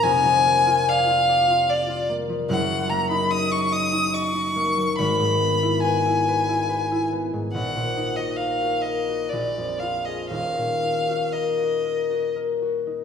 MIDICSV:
0, 0, Header, 1, 3, 480
1, 0, Start_track
1, 0, Key_signature, -6, "minor"
1, 0, Tempo, 819672
1, 21, Time_signature, 3, 2, 24, 8
1, 2421, Tempo, 848656
1, 4821, Tempo, 921659
1, 5301, Tempo, 1016949
1, 7069, End_track
2, 0, Start_track
2, 0, Title_t, "Violin"
2, 0, Program_c, 0, 40
2, 19, Note_on_c, 0, 80, 101
2, 520, Note_on_c, 0, 77, 90
2, 529, Note_off_c, 0, 80, 0
2, 992, Note_on_c, 0, 74, 81
2, 1001, Note_off_c, 0, 77, 0
2, 1229, Note_off_c, 0, 74, 0
2, 1463, Note_on_c, 0, 78, 92
2, 1696, Note_on_c, 0, 82, 82
2, 1705, Note_off_c, 0, 78, 0
2, 1814, Note_off_c, 0, 82, 0
2, 1817, Note_on_c, 0, 83, 81
2, 1939, Note_on_c, 0, 87, 89
2, 1948, Note_off_c, 0, 83, 0
2, 2061, Note_on_c, 0, 85, 92
2, 2070, Note_off_c, 0, 87, 0
2, 2181, Note_on_c, 0, 87, 97
2, 2190, Note_off_c, 0, 85, 0
2, 2425, Note_on_c, 0, 85, 92
2, 2433, Note_off_c, 0, 87, 0
2, 2895, Note_off_c, 0, 85, 0
2, 2898, Note_on_c, 0, 83, 91
2, 3373, Note_off_c, 0, 83, 0
2, 3377, Note_on_c, 0, 80, 86
2, 4083, Note_off_c, 0, 80, 0
2, 4342, Note_on_c, 0, 78, 81
2, 4697, Note_on_c, 0, 75, 66
2, 4705, Note_off_c, 0, 78, 0
2, 4814, Note_on_c, 0, 77, 66
2, 4822, Note_off_c, 0, 75, 0
2, 5051, Note_on_c, 0, 75, 64
2, 5059, Note_off_c, 0, 77, 0
2, 5296, Note_on_c, 0, 74, 58
2, 5304, Note_off_c, 0, 75, 0
2, 5533, Note_on_c, 0, 77, 53
2, 5541, Note_off_c, 0, 74, 0
2, 5655, Note_on_c, 0, 75, 51
2, 5663, Note_off_c, 0, 77, 0
2, 5773, Note_off_c, 0, 75, 0
2, 5776, Note_on_c, 0, 77, 68
2, 6256, Note_on_c, 0, 75, 51
2, 6263, Note_off_c, 0, 77, 0
2, 6739, Note_off_c, 0, 75, 0
2, 7069, End_track
3, 0, Start_track
3, 0, Title_t, "Harp"
3, 0, Program_c, 1, 46
3, 0, Note_on_c, 1, 58, 55
3, 0, Note_on_c, 1, 70, 58
3, 16, Note_on_c, 1, 29, 61
3, 21, Note_on_c, 1, 41, 70
3, 144, Note_on_c, 1, 53, 51
3, 257, Note_off_c, 1, 58, 0
3, 265, Note_on_c, 1, 58, 52
3, 391, Note_on_c, 1, 65, 51
3, 519, Note_on_c, 1, 74, 52
3, 627, Note_off_c, 1, 65, 0
3, 634, Note_on_c, 1, 65, 49
3, 749, Note_off_c, 1, 74, 0
3, 756, Note_on_c, 1, 74, 53
3, 869, Note_off_c, 1, 65, 0
3, 877, Note_on_c, 1, 65, 52
3, 984, Note_off_c, 1, 74, 0
3, 991, Note_on_c, 1, 74, 56
3, 1101, Note_off_c, 1, 65, 0
3, 1108, Note_on_c, 1, 65, 51
3, 1219, Note_off_c, 1, 58, 0
3, 1226, Note_on_c, 1, 58, 54
3, 1335, Note_off_c, 1, 53, 0
3, 1342, Note_on_c, 1, 53, 45
3, 1456, Note_on_c, 1, 30, 62
3, 1461, Note_on_c, 1, 42, 74
3, 1481, Note_off_c, 1, 29, 0
3, 1481, Note_off_c, 1, 53, 0
3, 1482, Note_off_c, 1, 65, 0
3, 1482, Note_off_c, 1, 74, 0
3, 1484, Note_off_c, 1, 41, 0
3, 1583, Note_on_c, 1, 54, 48
3, 1697, Note_off_c, 1, 58, 0
3, 1704, Note_on_c, 1, 58, 53
3, 1819, Note_on_c, 1, 63, 53
3, 1822, Note_off_c, 1, 70, 0
3, 1936, Note_on_c, 1, 75, 49
3, 2055, Note_off_c, 1, 63, 0
3, 2062, Note_on_c, 1, 63, 47
3, 2171, Note_off_c, 1, 75, 0
3, 2178, Note_on_c, 1, 75, 54
3, 2291, Note_off_c, 1, 63, 0
3, 2298, Note_on_c, 1, 63, 53
3, 2416, Note_off_c, 1, 75, 0
3, 2423, Note_on_c, 1, 75, 56
3, 2534, Note_off_c, 1, 63, 0
3, 2540, Note_on_c, 1, 63, 46
3, 2653, Note_off_c, 1, 58, 0
3, 2659, Note_on_c, 1, 58, 54
3, 2776, Note_off_c, 1, 54, 0
3, 2783, Note_on_c, 1, 54, 45
3, 2902, Note_on_c, 1, 32, 68
3, 2912, Note_off_c, 1, 30, 0
3, 2914, Note_off_c, 1, 42, 0
3, 2916, Note_off_c, 1, 58, 0
3, 2916, Note_off_c, 1, 63, 0
3, 2916, Note_off_c, 1, 75, 0
3, 2919, Note_off_c, 1, 54, 0
3, 3022, Note_on_c, 1, 44, 46
3, 3140, Note_on_c, 1, 59, 52
3, 3265, Note_on_c, 1, 64, 51
3, 3389, Note_on_c, 1, 71, 52
3, 3504, Note_off_c, 1, 64, 0
3, 3510, Note_on_c, 1, 64, 46
3, 3630, Note_off_c, 1, 71, 0
3, 3637, Note_on_c, 1, 71, 53
3, 3746, Note_off_c, 1, 64, 0
3, 3753, Note_on_c, 1, 64, 46
3, 3860, Note_off_c, 1, 71, 0
3, 3867, Note_on_c, 1, 71, 51
3, 3987, Note_off_c, 1, 64, 0
3, 3994, Note_on_c, 1, 64, 44
3, 4106, Note_off_c, 1, 59, 0
3, 4112, Note_on_c, 1, 59, 46
3, 4224, Note_off_c, 1, 44, 0
3, 4231, Note_on_c, 1, 44, 41
3, 4349, Note_on_c, 1, 34, 58
3, 4359, Note_off_c, 1, 71, 0
3, 4361, Note_off_c, 1, 32, 0
3, 4364, Note_off_c, 1, 44, 0
3, 4364, Note_off_c, 1, 59, 0
3, 4364, Note_off_c, 1, 64, 0
3, 4470, Note_on_c, 1, 46, 40
3, 4592, Note_on_c, 1, 63, 40
3, 4712, Note_on_c, 1, 66, 41
3, 4830, Note_on_c, 1, 70, 37
3, 4939, Note_off_c, 1, 66, 0
3, 4945, Note_on_c, 1, 66, 41
3, 5060, Note_off_c, 1, 70, 0
3, 5066, Note_on_c, 1, 70, 39
3, 5181, Note_off_c, 1, 66, 0
3, 5187, Note_on_c, 1, 66, 37
3, 5308, Note_off_c, 1, 34, 0
3, 5313, Note_on_c, 1, 34, 45
3, 5326, Note_off_c, 1, 46, 0
3, 5326, Note_off_c, 1, 63, 0
3, 5326, Note_off_c, 1, 66, 0
3, 5432, Note_on_c, 1, 41, 35
3, 5548, Note_on_c, 1, 65, 34
3, 5665, Note_on_c, 1, 68, 31
3, 5775, Note_on_c, 1, 27, 41
3, 5781, Note_on_c, 1, 39, 43
3, 5799, Note_off_c, 1, 68, 0
3, 5800, Note_off_c, 1, 34, 0
3, 5800, Note_off_c, 1, 65, 0
3, 5801, Note_off_c, 1, 41, 0
3, 5903, Note_on_c, 1, 46, 32
3, 6022, Note_on_c, 1, 63, 30
3, 6139, Note_on_c, 1, 66, 34
3, 6257, Note_off_c, 1, 70, 0
3, 6263, Note_on_c, 1, 70, 35
3, 6379, Note_off_c, 1, 66, 0
3, 6385, Note_on_c, 1, 66, 30
3, 6499, Note_off_c, 1, 70, 0
3, 6505, Note_on_c, 1, 70, 30
3, 6617, Note_off_c, 1, 66, 0
3, 6622, Note_on_c, 1, 66, 32
3, 6740, Note_off_c, 1, 70, 0
3, 6745, Note_on_c, 1, 70, 32
3, 6862, Note_off_c, 1, 66, 0
3, 6868, Note_on_c, 1, 66, 28
3, 6980, Note_off_c, 1, 63, 0
3, 6986, Note_on_c, 1, 63, 31
3, 7069, Note_off_c, 1, 27, 0
3, 7069, Note_off_c, 1, 39, 0
3, 7069, Note_off_c, 1, 46, 0
3, 7069, Note_off_c, 1, 63, 0
3, 7069, Note_off_c, 1, 66, 0
3, 7069, Note_off_c, 1, 70, 0
3, 7069, End_track
0, 0, End_of_file